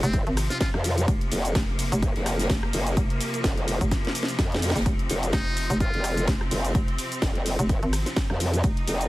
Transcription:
Already playing: C3 F3 C4
0.03 F1 C4, closed hi-hat, shaker
0.13 D#1, kick, closed hi-hat, ride, shaker
0.27 G#1, closed hi-hat
0.37 cross-stick, closed hi-hat, open hi-hat, ride, shaker
0.50 F4, snare, closed hi-hat, shaker
0.61 F4, kick, snare, closed hi-hat, ride, shaker
0.74 F2, cross-stick, closed hi-hat
0.84 closed hi-hat, open hi-hat, ride, shaker
0.98 closed hi-hat, shaker
1.08 F1 A#3, kick, closed hi-hat, ride, shaker
1.21 closed hi-hat
1.32 F1, closed hi-hat, open hi-hat, ride, shaker
1.45 closed hi-hat, shaker
1.55 F1, kick, snare, closed hi-hat, ride, shaker
1.69 closed hi-hat
1.79 closed hi-hat, open hi-hat, ride, shaker
1.92 F1, closed hi-hat, shaker
2.02 D#1, kick, closed hi-hat, ride, shaker
2.16 F1, snare, closed hi-hat
2.26 cross-stick, snare, closed hi-hat, open hi-hat, ride, shaker
2.39 snare, closed hi-hat, shaker
2.50 F1, kick, snare, closed hi-hat, ride, shaker
2.63 cross-stick, closed hi-hat
2.73 F#1, open hi-hat, ride, shaker
2.87 closed hi-hat, shaker
2.97 F1, kick, closed hi-hat, ride, shaker
3.10 closed hi-hat
3.21 closed hi-hat, open hi-hat, ride, shaker
3.34 closed hi-hat, shaker
3.44 F1, kick, snare, closed hi-hat, ride, shaker
3.57 closed hi-hat
3.68 closed hi-hat, open hi-hat, ride, shaker
3.81 F1, kick, closed hi-hat, shaker
3.91 kick, snare, closed hi-hat, ride, shaker
4.05 snare, closed hi-hat
4.15 closed hi-hat, open hi-hat, ride, shaker
4.23 snare
4.28 closed hi-hat, shaker
4.39 F2, kick, snare, closed hi-hat, ride, shaker
4.52 snare, closed hi-hat
4.62 snare, closed hi-hat, open hi-hat, ride, shaker
4.68 snare, closed hi-hat
4.75 F#1, snare, closed hi-hat, shaker
4.81 snare, closed hi-hat
4.85 F1 C4, kick, closed hi-hat, ride, shaker
4.99 closed hi-hat
5.10 F1, closed hi-hat, open hi-hat, ride, shaker
5.23 closed hi-hat, shaker
5.32 F1 D#4, kick, snare, closed hi-hat, ride, shaker
5.57 closed hi-hat, open hi-hat, ride, shaker
5.70 F1, closed hi-hat, shaker
5.80 D#1 F4, kick, closed hi-hat, ride, shaker
5.93 F1, snare, closed hi-hat
6.04 cross-stick, closed hi-hat, open hi-hat, ride, shaker
6.17 closed hi-hat, shaker
6.28 F1, kick, snare, closed hi-hat, ride, shaker
6.41 cross-stick, closed hi-hat
6.51 F#1, open hi-hat, ride, shaker
6.65 closed hi-hat, shaker
6.74 F1, kick, closed hi-hat, ride, shaker
6.88 closed hi-hat
6.98 closed hi-hat, open hi-hat, ride, shaker
7.12 closed hi-hat, shaker
7.22 F1, kick, snare, closed hi-hat, ride, shaker
7.35 closed hi-hat
7.45 closed hi-hat, open hi-hat, ride, shaker
7.59 F1, closed hi-hat, shaker
7.69 D#1, kick, closed hi-hat, ride, shaker
7.83 G#1, closed hi-hat
7.93 cross-stick, closed hi-hat, open hi-hat, ride, shaker
8.06 snare, closed hi-hat, shaker
8.16 kick, snare, closed hi-hat, ride, shaker
8.30 F2, cross-stick, closed hi-hat
8.40 closed hi-hat, open hi-hat, ride, shaker
8.53 closed hi-hat, shaker
8.63 F1 D#4, kick, closed hi-hat, ride, shaker
8.77 closed hi-hat
8.88 F1, closed hi-hat, open hi-hat, ride, shaker
9.01 closed hi-hat, shaker

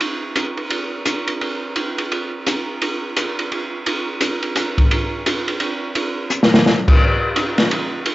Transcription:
0.01 ride
0.35 hi-hat pedal, ride
0.57 ride
0.70 ride
1.05 hi-hat pedal, ride
1.27 ride
1.41 ride
1.76 ride
1.98 ride
2.12 ride
2.46 hi-hat pedal, ride
2.82 ride
3.16 hi-hat pedal, ride
3.38 ride
3.51 ride
3.86 ride
4.21 hi-hat pedal, ride
4.42 ride
4.56 hi-hat pedal, ride
4.78 kick, ride
4.91 ride
5.26 hi-hat pedal, ride
5.48 ride
5.60 ride
5.95 ride
6.30 hi-hat pedal
6.43 snare
6.54 snare
6.66 snare
6.88 kick, crash
7.36 hi-hat pedal, ride
7.58 snare, ride
7.71 ride
8.06 ride

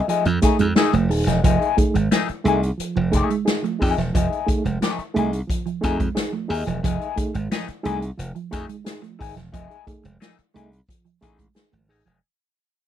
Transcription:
0.08 F3 A3 D#4 G#4, closed hi-hat
0.25 F2 F3, muted clean electric guitar stroke, closed hi-hat
0.42 A3 D#4 G#4, kick, snare, closed hi-hat
0.59 F2 G#3 D#4 G#4, muted clean electric guitar stroke, closed hi-hat
0.76 A3 D#4 G#4, snare
0.93 F1 F3 A3, closed hi-hat
1.10 D#1 D#4 G#4, muted clean electric guitar stroke, open hi-hat
1.27 E1 F3 A3 D#4 G#4, snare, closed hi-hat
1.43 F1 F3 A3 D#4 G#4, kick, closed hi-hat
1.61 D#4 G#4, closed hi-hat
1.77 A3 D#4 G#4, muted clean electric guitar stroke, kick, closed hi-hat
1.94 G#1 G#3, muted clean electric guitar stroke, closed hi-hat
2.11 F3 A3 D#4 G#4, snare, closed hi-hat
2.28 muted clean electric guitar stroke, muted slap bass stroke, closed hi-hat
2.44 C2 A3 D#4 G#4, closed hi-hat
2.61 D#4 G#4, muted clean electric guitar stroke, closed hi-hat
2.78 F3, muted slap bass stroke, muted clean electric guitar stroke, closed hi-hat
2.96 F1 F3, muted clean electric guitar stroke
3.11 A3 D#4 G#4, muted clean electric guitar stroke, kick, closed hi-hat
3.15 D#4 G#4
3.28 G#3 D#4 G#4, muted clean electric guitar stroke, closed hi-hat
3.45 D#4 G#4, snare, closed hi-hat
3.62 F3 A3, muted clean electric guitar stroke, closed hi-hat
3.79 F2 A3 D#4 G#4, muted clean electric guitar stroke, kick, open hi-hat
3.83 G#4
3.98 E1 F3, muted clean electric guitar stroke, snare, closed hi-hat
4.13 F1 F3 A3 D#4 G#4, kick, closed hi-hat
4.30 D#4 G#4, closed hi-hat
4.47 A3 D#4 G#4, muted clean electric guitar stroke, kick, closed hi-hat
4.65 F1 G#3, muted clean electric guitar stroke, closed hi-hat
4.81 F3 A3 D#4 G#4, snare, closed hi-hat
4.99 muted slap bass stroke, muted clean electric guitar stroke, closed hi-hat
5.14 C2 A3 D#4 G#4, closed hi-hat
5.18 D#4 G#4
5.31 D#4 G#4, muted clean electric guitar stroke, closed hi-hat
5.47 F3, muted clean electric guitar stroke, kick, closed hi-hat
5.66 F3, muted clean electric guitar stroke, closed hi-hat
5.81 F2 A3 D#4 G#4, muted clean electric guitar stroke, kick, snare, closed hi-hat
5.98 G#3 D#4 G#4, muted clean electric guitar stroke, kick, closed hi-hat
6.15 D#4 G#4, muted clean electric guitar stroke, snare, closed hi-hat
6.32 F3 A3, muted clean electric guitar stroke
6.48 D#2 A3 D#4 G#4, muted clean electric guitar stroke, open hi-hat
6.66 E1 F3 A3 D#4 G#4, closed hi-hat
6.83 F1 F3 A3 D#4 G#4, kick, closed hi-hat
6.99 D#4 G#4, closed hi-hat
7.16 A3 D#4 G#4, muted clean electric guitar stroke, kick, closed hi-hat
7.34 G#1 G#3, muted clean electric guitar stroke, closed hi-hat
7.50 F3 A3 D#4 G#4, snare, closed hi-hat
7.68 muted clean electric guitar stroke, muted slap bass stroke, closed hi-hat
7.83 C2 A3 D#4 G#4, closed hi-hat
8.01 D#4 G#4, muted clean electric guitar stroke, closed hi-hat
8.18 F1 F3, muted clean electric guitar stroke, closed hi-hat
8.35 F3, muted clean electric guitar stroke, closed hi-hat
8.51 F2 A3 D#4 G#4, muted clean electric guitar stroke, kick, snare, closed hi-hat
8.67 G#3 D#4 G#4, muted clean electric guitar stroke, closed hi-hat
8.84 D#4 G#4, snare, closed hi-hat
9.02 F3 A3, muted clean electric guitar stroke, closed hi-hat
9.19 G#1 A3 D#4 G#4, muted clean electric guitar stroke, kick, open hi-hat
9.36 E1 F3, muted clean electric guitar stroke, snare, closed hi-hat
9.52 F1 F3 A3 D#4 G#4, kick, closed hi-hat
9.70 D#4 G#4, closed hi-hat
9.87 A3 D#4 G#4, muted clean electric guitar stroke, kick, closed hi-hat
10.04 F1 G#3, muted clean electric guitar stroke, closed hi-hat
10.20 F3 A3 D#4 G#4, snare, closed hi-hat
10.38 muted clean electric guitar stroke, muted slap bass stroke, closed hi-hat
10.54 C2 A3 D#4 G#4, closed hi-hat
10.73 closed hi-hat
10.89 F3, muted clean electric guitar stroke, kick, closed hi-hat
11.05 F3, muted clean electric guitar stroke, closed hi-hat
11.21 A1 A3 D#4 G#4, kick, snare, closed hi-hat
11.38 G#3 D#4 G#4, muted clean electric guitar stroke, kick, closed hi-hat
11.55 D#4 G#4, muted clean electric guitar stroke, snare, closed hi-hat
11.72 G#1 F3 A3, muted clean electric guitar stroke, closed hi-hat
11.88 A1 A3 D#4 G#4, muted clean electric guitar stroke, open hi-hat
12.05 E1 F3 A3 D#4 G#4, closed hi-hat

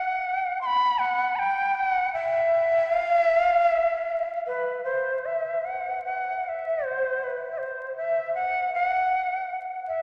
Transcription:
Already playing: F#5
0.61 C6
0.66 B5
0.99 F#5
1.36 G5 B5
1.75 F#5
2.13 E5
2.94 F5
3.16 E5
3.39 F5
3.61 E5
4.47 B4
4.84 C5
5.25 E5
5.64 F#5
6.04 F#5
6.44 F#5
6.49 E5
6.84 C5
7.24 B4
7.51 E5
7.58 C5
7.97 E5
8.35 F#5
8.74 F#5
9.88 E5

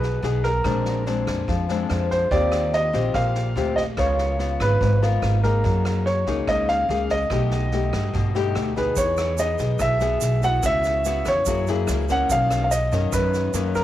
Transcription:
Already playing: B1 B2 B3 D#4 G#4 B4
0.03 snare
0.22 B1 B3 D#4 G#4, snare
0.44 A#4, kick, snare
0.64 A#1 A#2 G#3 C4 D4, kick, cross-stick, snare
0.85 snare
1.06 G#3 C4 D4, snare
1.27 F2, kick, cross-stick, snare
1.48 F2 F3, kick, snare
1.69 G#3 C4 D4, snare
1.90 F2, cross-stick, snare
2.10 C5, kick, snare
2.31 D#2 D#3 C4 F4 G4 D5, kick, snare
2.52 cross-stick, snare
2.73 D#5, snare
2.93 A#1 C4 F4 G4, kick, snare
3.14 A#1 A#2 F5, kick, cross-stick, snare
3.35 snare
3.56 D2 C4 F4 G4, snare
3.76 D#5, kick, snare
3.97 C#2 C#3 B3 F4 A#4 C#5, kick, cross-stick, snare
4.18 snare
4.39 B3 F4, snare
4.60 G#1 B4, kick, cross-stick, snare
4.81 G#1 G#2, kick, snare
5.02 B3 F4 A#4, snare
5.22 G#1, cross-stick, snare
5.43 A#3 D#4 G#4 A#4, kick, snare
5.64 F#2 F#3, kick, snare
5.85 cross-stick, snare
6.06 C#5, snare
6.26 C#2 A#3 D#4 G#4, kick, snare
6.47 C#2 C#3 D#5, kick, cross-stick, snare
6.68 F5, snare
6.89 C#2 A#3 D#4 G#4, snare
7.09 D#5, kick, snare
7.30 B1 B2 A3 D#4 G4, kick, cross-stick, snare
7.51 snare
7.71 A3 D#4 G4, snare
7.93 G2, kick, cross-stick, snare
8.13 G2 B2, kick, snare
8.35 A3 D#4 G4, snare
8.55 D2, cross-stick, snare
8.76 B3 D#4 G#4 B4, kick, snare
8.96 E2 E3 C#5, kick, snare, shaker
9.17 cross-stick, snare, shaker
9.38 B3 D#4 G#4 D#5, snare, shaker
9.59 B1, kick, snare, shaker
9.79 B1 B2 E5, kick, cross-stick, snare, shaker
10.00 B3 G#4, snare, shaker
10.21 B1, snare, shaker
10.42 B3 E4 F#4 F#5, kick, snare, shaker
10.63 C#2 C#3 E5, kick, cross-stick, snare, shaker
10.84 snare, shaker
11.05 B3 E4 F#4, snare, shaker
11.25 E2 C#5, kick, cross-stick, snare, shaker
11.46 F#2 F#3 A#3 E4 G#4, kick, snare, shaker
11.67 A#3 E4 G#4, snare, shaker
11.87 C#2, cross-stick, snare, shaker
12.09 D#3 A#3 C#4 F#5, kick, snare, shaker
12.29 B1 B2 F5, kick, snare, shaker
12.50 cross-stick, snare, shaker
12.64 F5
12.71 D#5, snare, shaker
12.92 F#2 D#3 C#4, kick, snare, shaker
13.12 F#2 B4, kick, cross-stick, snare, shaker
13.33 snare, shaker
13.53 F#2 D#3 A#3 C#4, snare, shaker
13.75 A#4, kick, snare, shaker

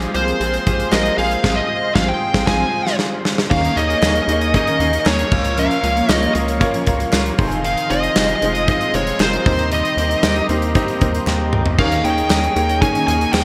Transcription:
Already playing: F3 G#3 C4 F4 G4 G#4 C5 F5 C6
0.02 closed hi-hat
0.14 C2 F3 G#3 A#3 C4 F4 G#4 A#4 C5, closed hi-hat
0.28 closed hi-hat
0.40 A#1 G#3 C4 F4 G#4, closed hi-hat
0.54 closed hi-hat
0.66 A#1 G#3 C4 F4 G4 G#4, kick, closed hi-hat
0.80 closed hi-hat
0.91 A#1 G#3 A#3 C4 F4 A#4 D#5, snare, clap, tambourine
1.05 closed hi-hat
1.17 A#1 G#3 C4 F4 G#4 F5, open hi-hat
1.31 closed hi-hat
1.43 A#1 F3 G#3 C4 F4 G#4, kick, snare, crash
1.56 D#5
1.95 A#1 F3 G#3 C4 F4 G#4 F5, kick, snare
2.08 G5
2.33 A#1 F3 G#3 C4 F4 G#4, kick, snare
2.46 A#1 F3 G#3 C4 F4 G#4 G#5, kick, snare, crash
2.87 snare
2.99 snare
3.25 snare
3.38 snare
3.50 D#2 D#3 A#3 C#4 D#4 G#4 A#4 D#5 F5 G#5 C#6, kick, crash
3.65 closed hi-hat
3.76 D#2 A#3 C#4 D#4 G#4 C#5 D#5, closed hi-hat
3.89 A#3 G#4 C#5, closed hi-hat
4.01 D#2 D#3 A#3 C#4 D#4 G#4 A#4, snare, clap, tambourine
4.15 closed hi-hat
4.28 D#2 A#3 C#4 D#4 G#4 A#4, closed hi-hat
4.41 closed hi-hat
4.53 D#3 A#3 C#4 D#4 G#4 A#4 D#5, kick, closed hi-hat
4.67 D#3 C#4 A#4, closed hi-hat
4.80 D#2 D#3 A#3 C#4 D#4 G#4 A#4, closed hi-hat
4.93 closed hi-hat
5.06 D#2 A#3 C#4 D#4 G#4 A#4 C#5, snare, clap, tambourine
5.19 closed hi-hat
5.31 C#2 A#2 F3 A#3 C#4 F4 A#4 C#5 F5, kick, crash
5.44 closed hi-hat
5.57 F3 C#4 A#4 F5, closed hi-hat
5.71 closed hi-hat
5.83 C#2 A#3 C#4 F4 A#4 C#5, closed hi-hat
5.96 A#3 F4 C#5, closed hi-hat
6.09 C#2 A#2 F3 A#3 C#4 F4 A#4 D#5, snare, clap, tambourine
6.23 closed hi-hat
6.35 C#2 A#3 C#4 F4 A#4 D#5, closed hi-hat
6.48 closed hi-hat
6.60 A#2 F3 A#3 C#4 F4 A#4 C#5, kick, closed hi-hat
6.74 F3 C#4 A#4, closed hi-hat
6.86 C#2 G#3 A#3 C#4 F4 G#4 A#4 C#5, kick, closed hi-hat
7.00 closed hi-hat
7.12 C#2 A#3 C#4 F4 A#4 C#5 F5, snare, clap, tambourine
7.26 closed hi-hat
7.38 F1 D#3 F3 C4 D#4 F4 G#4 C5 D#5 F5 C6, kick, open hi-hat
7.47 G#5
7.52 closed hi-hat
7.64 D#3 F5, closed hi-hat
7.78 closed hi-hat
7.89 F1 C4 D#4 F4 G#4 C5 D#5, closed hi-hat
8.03 closed hi-hat
8.16 F1 F3 C4 D#4 F4 G#4 C5, snare, clap, tambourine
8.29 closed hi-hat
8.42 F1 G#3 C4 D#4 F4 G#4 D#5, closed hi-hat
8.55 closed hi-hat
8.68 F3 C4 D#4 F4 G#4 D#5, kick, closed hi-hat
8.81 closed hi-hat
8.94 F1 G#3 C4 D#4 F4 G#4 C5 C#5, closed hi-hat
9.07 closed hi-hat
9.19 F1 C4 D#4 F4 G#4 A#4 C5, snare, clap, tambourine
9.33 closed hi-hat
9.45 D#2 C3 D#3 G3 C4 D#4 G4 A#4 C5 A#5, kick, open hi-hat
9.59 closed hi-hat
9.72 D#3 D#5, closed hi-hat
9.85 closed hi-hat
9.97 D#2 C4 D#4 G4 A#4 C5, closed hi-hat
10.11 closed hi-hat
10.23 D#2 C3 G3 C4 D#4 G4 A#4 D#5, snare, clap, tambourine
10.36 closed hi-hat
10.49 D#2 A#3 C4 D#4 G4 A#4 D#5, closed hi-hat
10.62 closed hi-hat
10.73 C3 G3 C4 D#4 G4 A#4 D#5, kick, closed hi-hat
10.80 C4
10.88 closed hi-hat
11.01 D#2 A#3 C4 D#4 G4 A#4 C5, kick, closed hi-hat
11.14 closed hi-hat
11.27 D#2 G4 D#5 C6, snare, clap
11.40 A#5
11.53 C#2 C4 A#4 G5, mid tom
11.65 G4 D#5, floor tom
11.78 D#2 D#3 A#3 C#4 D#4 G#4 A#4 C#5 F5 A#5 C#6, kick, crash
11.92 closed hi-hat
12.04 D#2 C#4 D#4 G#4 A#4 C#5 G5, closed hi-hat
12.17 A#3 G#4 C#5, closed hi-hat
12.29 D#2 D#3 A#3 C#4 D#4 G#4 A#4 D#5, snare, clap, tambourine
12.44 closed hi-hat
12.55 D#2 A#3 C#4 D#4 G#4 A#4 C#5, closed hi-hat
12.69 closed hi-hat
12.81 D#3 A#3 C#4 D#4 G#4 A#4 C#5 G#5, kick, closed hi-hat
12.95 D#3 C#4 A#4, closed hi-hat
13.07 D#2 D#3 A#3 C#4 D#4 G#4 A#4 D#5 G#5, closed hi-hat
13.21 closed hi-hat
13.33 D#2 C#4 D#4 G#4 A#4 C#5 G5, snare, clap, tambourine

